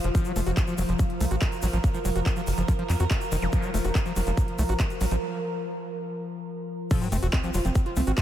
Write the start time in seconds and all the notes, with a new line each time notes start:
Already playing: F3 F4 C5 F5
0.04 F1 F3, closed hi-hat
0.15 F3 A#4, kick, closed hi-hat, shaker
0.25 F#3, closed hi-hat, shaker
0.36 F1 A3, open hi-hat, shaker
0.47 F1 F#4, closed hi-hat, shaker
0.57 F#3, kick, clap, closed hi-hat, shaker
0.67 F3, closed hi-hat, shaker
0.78 F1 F#3, open hi-hat, shaker
0.89 F1 F3, closed hi-hat, shaker
0.99 kick, closed hi-hat, shaker
1.10 closed hi-hat
1.20 C2 A3, open hi-hat, shaker
1.31 A1 F#4, closed hi-hat, shaker
1.41 F#3, kick, clap, closed hi-hat, shaker
1.52 closed hi-hat, shaker
1.62 A1 F#3, open hi-hat, shaker
1.73 A1 F3, closed hi-hat, shaker
1.84 kick, closed hi-hat, shaker
1.94 F3, closed hi-hat, shaker
2.05 F1 F#3, open hi-hat, shaker
2.16 F1 F#4, closed hi-hat, shaker
2.26 F#3, kick, clap, closed hi-hat, shaker
2.36 F3, closed hi-hat, shaker
2.47 F#1, open hi-hat, shaker
2.57 F#1 F3, closed hi-hat, shaker
2.68 F3, kick, closed hi-hat, shaker
2.79 F3, closed hi-hat
2.90 F2, clap, open hi-hat, shaker
3.00 F2 F#4, closed hi-hat, shaker
3.11 kick, clap, closed hi-hat, shaker
3.21 closed hi-hat, shaker
3.32 F1 D#3, open hi-hat, shaker
3.42 F1 F3, closed hi-hat, zap, shaker
3.52 F3, kick, closed hi-hat, shaker
3.62 F#3, closed hi-hat, shaker
3.74 F1 A3, open hi-hat, shaker
3.84 F1 F#4, closed hi-hat, shaker
3.95 F#3, kick, clap, closed hi-hat, shaker
4.06 F3, closed hi-hat, shaker
4.16 F1 F#3, open hi-hat, shaker
4.26 F1 F3, closed hi-hat, shaker
4.37 kick, closed hi-hat, shaker
4.48 closed hi-hat
4.58 C2 A3, open hi-hat, shaker
4.69 A1 F#4, closed hi-hat, shaker
4.80 F#3, kick, clap, closed hi-hat, shaker
4.90 closed hi-hat, shaker
5.01 A1 F#3, open hi-hat, shaker
5.11 A1 F3, closed hi-hat, shaker
6.91 F3 F4 A4, kick, closed hi-hat, crash, sub drop, shaker
6.97 C5
7.01 F#3 C4, closed hi-hat, shaker
7.12 F1 A3 C4, open hi-hat, shaker
7.23 F1 F#4, closed hi-hat, shaker
7.32 F#3 C4, kick, clap, closed hi-hat, shaker
7.43 F3 C4, closed hi-hat, shaker
7.54 F1 F#3 F4, open hi-hat, shaker
7.60 F5
7.65 F1 F3 C4, closed hi-hat, shaker
7.75 C4, kick, closed hi-hat, shaker
7.86 F4, closed hi-hat
7.96 C2 A3 C4, open hi-hat, shaker
8.07 A1 C4 F#4, closed hi-hat, shaker
8.17 F#3 F4, kick, clap, closed hi-hat, shaker